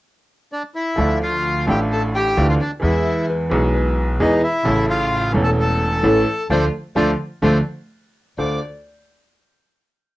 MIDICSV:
0, 0, Header, 1, 6, 480
1, 0, Start_track
1, 0, Key_signature, -1, "minor"
1, 0, Tempo, 461538
1, 1022, Time_signature, 4, 2, 24, 8
1, 10571, End_track
2, 0, Start_track
2, 0, Title_t, "Bandoneon"
2, 0, Program_c, 0, 23
2, 544, Note_on_c, 0, 74, 63
2, 546, Note_on_c, 0, 62, 47
2, 652, Note_off_c, 0, 74, 0
2, 653, Note_off_c, 0, 62, 0
2, 781, Note_on_c, 0, 64, 52
2, 787, Note_on_c, 0, 76, 65
2, 1229, Note_off_c, 0, 64, 0
2, 1233, Note_off_c, 0, 76, 0
2, 1274, Note_on_c, 0, 65, 55
2, 1275, Note_on_c, 0, 77, 70
2, 1721, Note_off_c, 0, 65, 0
2, 1722, Note_off_c, 0, 77, 0
2, 1755, Note_on_c, 0, 79, 65
2, 1766, Note_on_c, 0, 67, 57
2, 1862, Note_off_c, 0, 79, 0
2, 1871, Note_off_c, 0, 67, 0
2, 1999, Note_on_c, 0, 81, 70
2, 2003, Note_on_c, 0, 69, 55
2, 2105, Note_off_c, 0, 81, 0
2, 2108, Note_off_c, 0, 69, 0
2, 2235, Note_on_c, 0, 79, 81
2, 2242, Note_on_c, 0, 67, 57
2, 2566, Note_off_c, 0, 79, 0
2, 2570, Note_off_c, 0, 67, 0
2, 2595, Note_on_c, 0, 65, 50
2, 2597, Note_on_c, 0, 77, 65
2, 2648, Note_off_c, 0, 65, 0
2, 2649, Note_off_c, 0, 77, 0
2, 2711, Note_on_c, 0, 74, 67
2, 2717, Note_on_c, 0, 62, 53
2, 2818, Note_off_c, 0, 74, 0
2, 2823, Note_off_c, 0, 62, 0
2, 2944, Note_on_c, 0, 76, 61
2, 2948, Note_on_c, 0, 64, 46
2, 3387, Note_off_c, 0, 76, 0
2, 3389, Note_off_c, 0, 64, 0
2, 4374, Note_on_c, 0, 63, 52
2, 4375, Note_on_c, 0, 75, 67
2, 4594, Note_off_c, 0, 63, 0
2, 4594, Note_off_c, 0, 75, 0
2, 4606, Note_on_c, 0, 64, 59
2, 4613, Note_on_c, 0, 76, 81
2, 5049, Note_off_c, 0, 64, 0
2, 5053, Note_off_c, 0, 76, 0
2, 5083, Note_on_c, 0, 65, 59
2, 5095, Note_on_c, 0, 77, 86
2, 5528, Note_off_c, 0, 65, 0
2, 5534, Note_off_c, 0, 77, 0
2, 5651, Note_on_c, 0, 69, 61
2, 5660, Note_on_c, 0, 81, 81
2, 5721, Note_off_c, 0, 69, 0
2, 5728, Note_off_c, 0, 81, 0
2, 5817, Note_on_c, 0, 69, 58
2, 5839, Note_on_c, 0, 81, 75
2, 6726, Note_off_c, 0, 69, 0
2, 6737, Note_off_c, 0, 81, 0
2, 6771, Note_on_c, 0, 72, 74
2, 6772, Note_on_c, 0, 74, 73
2, 6778, Note_on_c, 0, 69, 77
2, 6921, Note_off_c, 0, 72, 0
2, 6922, Note_off_c, 0, 74, 0
2, 6925, Note_off_c, 0, 69, 0
2, 7239, Note_on_c, 0, 72, 71
2, 7239, Note_on_c, 0, 74, 76
2, 7244, Note_on_c, 0, 69, 74
2, 7394, Note_off_c, 0, 72, 0
2, 7395, Note_off_c, 0, 74, 0
2, 7397, Note_off_c, 0, 69, 0
2, 7730, Note_on_c, 0, 72, 67
2, 7733, Note_on_c, 0, 69, 66
2, 7733, Note_on_c, 0, 74, 67
2, 7886, Note_off_c, 0, 72, 0
2, 7888, Note_off_c, 0, 69, 0
2, 7888, Note_off_c, 0, 74, 0
2, 8722, Note_on_c, 0, 86, 60
2, 8943, Note_off_c, 0, 86, 0
2, 10571, End_track
3, 0, Start_track
3, 0, Title_t, "Hollow-body jazz guitar"
3, 0, Program_c, 1, 26
3, 3429, Note_on_c, 1, 71, 67
3, 3660, Note_on_c, 1, 73, 83
3, 3670, Note_off_c, 1, 71, 0
3, 3901, Note_on_c, 1, 71, 70
3, 3906, Note_off_c, 1, 73, 0
3, 4233, Note_off_c, 1, 71, 0
3, 6268, Note_on_c, 1, 64, 69
3, 6719, Note_off_c, 1, 64, 0
3, 6763, Note_on_c, 1, 74, 82
3, 6767, Note_on_c, 1, 69, 76
3, 6774, Note_on_c, 1, 72, 83
3, 6916, Note_off_c, 1, 74, 0
3, 6920, Note_off_c, 1, 69, 0
3, 6921, Note_off_c, 1, 72, 0
3, 7234, Note_on_c, 1, 69, 62
3, 7236, Note_on_c, 1, 72, 68
3, 7242, Note_on_c, 1, 74, 71
3, 7392, Note_off_c, 1, 72, 0
3, 7393, Note_off_c, 1, 69, 0
3, 7393, Note_off_c, 1, 74, 0
3, 7738, Note_on_c, 1, 69, 73
3, 7738, Note_on_c, 1, 74, 69
3, 7739, Note_on_c, 1, 72, 76
3, 7889, Note_off_c, 1, 74, 0
3, 7891, Note_off_c, 1, 72, 0
3, 7892, Note_off_c, 1, 69, 0
3, 8722, Note_on_c, 1, 69, 59
3, 8943, Note_off_c, 1, 69, 0
3, 10571, End_track
4, 0, Start_track
4, 0, Title_t, "Violin"
4, 0, Program_c, 2, 40
4, 1274, Note_on_c, 2, 65, 68
4, 1721, Note_off_c, 2, 65, 0
4, 1752, Note_on_c, 2, 67, 57
4, 1860, Note_off_c, 2, 67, 0
4, 2001, Note_on_c, 2, 69, 66
4, 2107, Note_off_c, 2, 69, 0
4, 2236, Note_on_c, 2, 67, 70
4, 2567, Note_off_c, 2, 67, 0
4, 2588, Note_on_c, 2, 65, 59
4, 2642, Note_off_c, 2, 65, 0
4, 2705, Note_on_c, 2, 62, 56
4, 2813, Note_off_c, 2, 62, 0
4, 2947, Note_on_c, 2, 64, 57
4, 3389, Note_off_c, 2, 64, 0
4, 4380, Note_on_c, 2, 63, 54
4, 4597, Note_off_c, 2, 63, 0
4, 4626, Note_on_c, 2, 64, 65
4, 5060, Note_off_c, 2, 64, 0
4, 5100, Note_on_c, 2, 65, 69
4, 5537, Note_off_c, 2, 65, 0
4, 5660, Note_on_c, 2, 69, 66
4, 5728, Note_off_c, 2, 69, 0
4, 5823, Note_on_c, 2, 69, 58
4, 6728, Note_off_c, 2, 69, 0
4, 6759, Note_on_c, 2, 65, 76
4, 6914, Note_off_c, 2, 65, 0
4, 7247, Note_on_c, 2, 65, 76
4, 7400, Note_off_c, 2, 65, 0
4, 7733, Note_on_c, 2, 65, 66
4, 7888, Note_off_c, 2, 65, 0
4, 8716, Note_on_c, 2, 74, 60
4, 8939, Note_off_c, 2, 74, 0
4, 10571, End_track
5, 0, Start_track
5, 0, Title_t, "Upright piano"
5, 0, Program_c, 3, 0
5, 995, Note_on_c, 3, 53, 54
5, 1010, Note_on_c, 3, 57, 49
5, 1016, Note_on_c, 3, 38, 56
5, 1017, Note_on_c, 3, 50, 60
5, 1021, Note_on_c, 3, 62, 46
5, 1037, Note_on_c, 3, 65, 53
5, 1700, Note_off_c, 3, 53, 0
5, 1707, Note_off_c, 3, 57, 0
5, 1710, Note_off_c, 3, 38, 0
5, 1710, Note_off_c, 3, 50, 0
5, 1712, Note_off_c, 3, 62, 0
5, 1721, Note_off_c, 3, 65, 0
5, 1726, Note_on_c, 3, 64, 57
5, 1736, Note_on_c, 3, 57, 55
5, 1744, Note_on_c, 3, 33, 62
5, 1745, Note_on_c, 3, 45, 74
5, 1753, Note_on_c, 3, 62, 55
5, 1766, Note_on_c, 3, 65, 63
5, 2422, Note_off_c, 3, 64, 0
5, 2428, Note_off_c, 3, 57, 0
5, 2432, Note_off_c, 3, 33, 0
5, 2432, Note_off_c, 3, 45, 0
5, 2436, Note_off_c, 3, 62, 0
5, 2443, Note_off_c, 3, 65, 0
5, 2466, Note_on_c, 3, 38, 72
5, 2466, Note_on_c, 3, 50, 75
5, 2467, Note_on_c, 3, 52, 62
5, 2467, Note_on_c, 3, 62, 55
5, 2469, Note_on_c, 3, 57, 50
5, 2470, Note_on_c, 3, 65, 70
5, 2668, Note_off_c, 3, 38, 0
5, 2668, Note_off_c, 3, 50, 0
5, 2669, Note_off_c, 3, 52, 0
5, 2669, Note_off_c, 3, 62, 0
5, 2670, Note_off_c, 3, 57, 0
5, 2670, Note_off_c, 3, 65, 0
5, 2908, Note_on_c, 3, 52, 58
5, 2923, Note_off_c, 3, 52, 0
5, 2925, Note_on_c, 3, 56, 46
5, 2929, Note_on_c, 3, 52, 65
5, 2930, Note_on_c, 3, 40, 65
5, 2938, Note_on_c, 3, 59, 47
5, 2952, Note_on_c, 3, 68, 59
5, 3612, Note_off_c, 3, 56, 0
5, 3614, Note_off_c, 3, 52, 0
5, 3615, Note_off_c, 3, 40, 0
5, 3619, Note_off_c, 3, 59, 0
5, 3626, Note_off_c, 3, 68, 0
5, 3634, Note_on_c, 3, 52, 63
5, 3647, Note_on_c, 3, 56, 54
5, 3652, Note_on_c, 3, 47, 69
5, 3654, Note_on_c, 3, 35, 74
5, 3659, Note_on_c, 3, 59, 58
5, 3671, Note_on_c, 3, 68, 62
5, 4326, Note_off_c, 3, 52, 0
5, 4333, Note_off_c, 3, 56, 0
5, 4335, Note_off_c, 3, 47, 0
5, 4337, Note_off_c, 3, 35, 0
5, 4339, Note_off_c, 3, 59, 0
5, 4345, Note_off_c, 3, 68, 0
5, 4367, Note_on_c, 3, 56, 58
5, 4369, Note_on_c, 3, 52, 73
5, 4370, Note_on_c, 3, 40, 76
5, 4372, Note_on_c, 3, 59, 56
5, 4372, Note_on_c, 3, 68, 77
5, 4569, Note_off_c, 3, 56, 0
5, 4571, Note_off_c, 3, 40, 0
5, 4571, Note_off_c, 3, 52, 0
5, 4571, Note_off_c, 3, 59, 0
5, 4572, Note_off_c, 3, 68, 0
5, 4816, Note_on_c, 3, 49, 58
5, 4831, Note_on_c, 3, 57, 55
5, 4834, Note_on_c, 3, 33, 70
5, 4841, Note_on_c, 3, 45, 68
5, 4842, Note_on_c, 3, 61, 54
5, 4859, Note_on_c, 3, 69, 63
5, 5510, Note_off_c, 3, 49, 0
5, 5518, Note_off_c, 3, 57, 0
5, 5519, Note_off_c, 3, 33, 0
5, 5523, Note_off_c, 3, 45, 0
5, 5523, Note_off_c, 3, 61, 0
5, 5532, Note_off_c, 3, 69, 0
5, 5532, Note_on_c, 3, 52, 62
5, 5548, Note_on_c, 3, 57, 61
5, 5558, Note_on_c, 3, 28, 69
5, 5558, Note_on_c, 3, 40, 73
5, 5561, Note_on_c, 3, 61, 57
5, 5579, Note_on_c, 3, 69, 69
5, 6230, Note_off_c, 3, 52, 0
5, 6238, Note_off_c, 3, 57, 0
5, 6242, Note_off_c, 3, 40, 0
5, 6243, Note_off_c, 3, 28, 0
5, 6244, Note_off_c, 3, 61, 0
5, 6253, Note_off_c, 3, 69, 0
5, 6274, Note_on_c, 3, 52, 68
5, 6276, Note_on_c, 3, 33, 67
5, 6277, Note_on_c, 3, 45, 68
5, 6277, Note_on_c, 3, 57, 61
5, 6280, Note_on_c, 3, 61, 61
5, 6283, Note_on_c, 3, 69, 70
5, 6478, Note_off_c, 3, 52, 0
5, 6479, Note_off_c, 3, 33, 0
5, 6479, Note_off_c, 3, 45, 0
5, 6479, Note_off_c, 3, 57, 0
5, 6481, Note_off_c, 3, 61, 0
5, 6482, Note_off_c, 3, 69, 0
5, 6762, Note_on_c, 3, 53, 75
5, 6762, Note_on_c, 3, 57, 67
5, 6766, Note_on_c, 3, 50, 74
5, 6915, Note_off_c, 3, 57, 0
5, 6916, Note_off_c, 3, 53, 0
5, 6918, Note_off_c, 3, 50, 0
5, 7238, Note_on_c, 3, 57, 79
5, 7240, Note_on_c, 3, 50, 79
5, 7240, Note_on_c, 3, 53, 83
5, 7394, Note_off_c, 3, 57, 0
5, 7395, Note_off_c, 3, 50, 0
5, 7395, Note_off_c, 3, 53, 0
5, 7721, Note_on_c, 3, 50, 78
5, 7722, Note_on_c, 3, 53, 74
5, 7722, Note_on_c, 3, 57, 80
5, 7881, Note_off_c, 3, 50, 0
5, 7881, Note_off_c, 3, 53, 0
5, 7881, Note_off_c, 3, 57, 0
5, 8718, Note_on_c, 3, 62, 38
5, 8718, Note_on_c, 3, 65, 35
5, 8718, Note_on_c, 3, 72, 45
5, 8722, Note_on_c, 3, 38, 40
5, 8918, Note_off_c, 3, 62, 0
5, 8918, Note_off_c, 3, 65, 0
5, 8918, Note_off_c, 3, 72, 0
5, 8920, Note_off_c, 3, 38, 0
5, 10571, End_track
6, 0, Start_track
6, 0, Title_t, "Upright bass"
6, 0, Program_c, 4, 32
6, 1011, Note_on_c, 4, 38, 72
6, 1708, Note_off_c, 4, 38, 0
6, 1736, Note_on_c, 4, 33, 84
6, 2428, Note_off_c, 4, 33, 0
6, 2463, Note_on_c, 4, 38, 72
6, 2667, Note_off_c, 4, 38, 0
6, 2939, Note_on_c, 4, 40, 78
6, 3620, Note_off_c, 4, 40, 0
6, 3651, Note_on_c, 4, 35, 75
6, 4335, Note_off_c, 4, 35, 0
6, 4366, Note_on_c, 4, 40, 77
6, 4568, Note_off_c, 4, 40, 0
6, 4841, Note_on_c, 4, 33, 76
6, 5523, Note_off_c, 4, 33, 0
6, 5555, Note_on_c, 4, 28, 82
6, 6241, Note_off_c, 4, 28, 0
6, 6273, Note_on_c, 4, 33, 77
6, 6477, Note_off_c, 4, 33, 0
6, 6756, Note_on_c, 4, 38, 73
6, 6938, Note_off_c, 4, 38, 0
6, 7234, Note_on_c, 4, 38, 71
6, 7417, Note_off_c, 4, 38, 0
6, 7717, Note_on_c, 4, 38, 77
6, 7905, Note_off_c, 4, 38, 0
6, 8710, Note_on_c, 4, 38, 41
6, 8914, Note_off_c, 4, 38, 0
6, 10571, End_track
0, 0, End_of_file